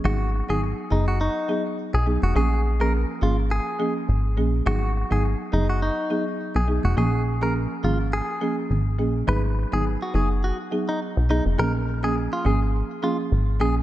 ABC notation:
X:1
M:4/4
L:1/16
Q:"Swing 16ths" 1/4=104
K:G#dor
V:1 name="Clean electric guitar"
F2 z G z2 D F D3 z2 G z F | G2 z A z2 E z G3 z4 z | F2 z G z2 D F D3 z2 G z F | G2 z A z2 E z G3 z4 z |
B z2 G z F G z F z2 D z2 D z | A z2 G z E G z3 E z3 G z |]
V:2 name="Marimba"
[F,B,DG] z2 [F,B,DG]3 [F,B,DG]2 z2 [F,B,DG] z3 [F,B,DG]2 | [E,A,CG] z2 [E,A,CG]3 [E,A,CG]2 z2 [E,A,CG] z3 [E,A,CG]2 | [F,B,DG] z2 [F,B,DG]3 [F,B,DG]2 z2 [F,B,DG] z3 [F,B,DG]2 | [E,A,CG] z2 [E,A,CG]3 [E,A,CG]2 z2 [E,A,CG] z3 [E,A,CG]2 |
[F,B,DG] z2 [F,B,DG]3 [F,B,DG]2 z2 [F,B,DG] z3 [F,B,DG]2 | [E,A,CG] z2 [E,A,CG]3 [E,A,CG]2 z2 [E,A,CG] z3 [E,A,CG] z |]
V:3 name="Analog synth bass" clef=bass
G,,,3 G,,,2 z F,,,3 z4 B,,,2 E,,, | A,,,4- A,,, z G,,,3 z3 G,,,2 A,,,2 | G,,,3 G,,,2 z F,,,3 z4 B,,,2 E,,, | A,,,4- A,,, z G,,,3 z3 G,,,2 A,,,2 |
G,,,3 G,,,2 z F,,,3 z4 B,,,2 E,,, | A,,,4- A,,, z G,,,3 z3 G,,,2 A,,,2 |]